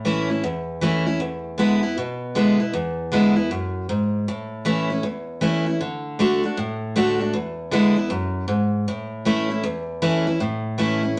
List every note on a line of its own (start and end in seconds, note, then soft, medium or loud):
0.00 0.40 A2 medium
0.05 0.29 E3 medium
0.05 0.29 A3 medium
0.05 0.29 C#4 loud
0.05 0.28 E4 loud
0.30 0.44 C#4 medium
0.30 0.43 E4 medium
0.44 1.18 E2 medium
0.81 1.05 E3 loud
0.81 1.06 A3 loud
0.81 1.06 C#4 loud
0.81 1.05 E4 loud
1.06 1.20 C#4 medium
1.06 1.20 E4 medium
1.20 1.94 E2 medium
1.58 1.82 D3 medium
1.58 1.82 G#3 medium
1.58 1.82 B3 loud
1.58 1.82 E4 loud
1.83 1.97 B3 medium
1.83 1.96 E4 medium
1.98 2.71 B2 medium
2.35 2.59 D3 medium
2.35 2.59 G#3 medium
2.35 2.60 B3 loud
2.35 2.59 E4 loud
2.60 2.74 B3 soft
2.60 2.73 E4 medium
2.73 3.48 E2 medium
3.12 3.36 D3 medium
3.12 3.36 G#3 medium
3.12 3.36 B3 medium
3.12 3.35 E4 loud
3.36 3.51 B3 soft
3.36 3.50 E4 medium
3.51 3.88 F#2 medium
3.89 4.26 G#2 medium
4.28 5.02 A2 medium
4.65 4.89 E3 medium
4.65 4.89 A3 medium
4.65 4.89 C#4 loud
4.65 4.89 E4 medium
4.90 5.05 C#4 medium
4.90 5.04 E4 medium
5.03 5.78 E2 medium
5.41 5.65 E3 loud
5.41 5.66 A3 medium
5.41 5.66 C#4 medium
5.41 5.65 E4 medium
5.66 5.81 C#4 soft
5.66 5.80 E4 medium
5.81 6.18 D3 medium
6.19 6.43 D3 medium
6.19 6.43 A3 loud
6.19 6.44 D4 medium
6.19 6.42 F#4 medium
6.43 6.58 D4 medium
6.43 6.57 F#4 medium
6.57 7.32 A2 loud
6.96 7.20 D3 loud
6.96 7.20 A3 loud
6.96 7.20 D4 loud
6.96 7.19 F#4 loud
7.20 7.34 D4 soft
7.20 7.33 F#4 medium
7.33 8.08 E2 medium
7.71 7.96 D3 medium
7.71 7.96 G#3 loud
7.71 7.96 B3 medium
7.71 7.95 E4 loud
7.96 8.11 B3 medium
7.96 8.10 E4 medium
8.10 8.47 F#2 medium
8.48 8.85 G#2 medium
8.88 9.61 A2 medium
9.25 9.49 E3 medium
9.25 9.49 A3 loud
9.25 9.50 C#4 medium
9.25 9.49 E4 loud
9.50 9.64 C#4 medium
9.50 9.63 E4 medium
9.63 10.37 E2 medium
10.02 10.26 E3 loud
10.02 10.26 A3 loud
10.02 10.26 C#4 loud
10.02 10.26 E4 loud
10.27 10.41 C#4 medium
10.27 10.40 E4 medium
10.40 11.14 A2 medium
10.78 11.02 E3 medium
10.78 11.02 A3 medium
10.78 11.02 C#4 loud
10.78 11.01 E4 loud
11.03 11.17 C#4 soft
11.03 11.16 E4 medium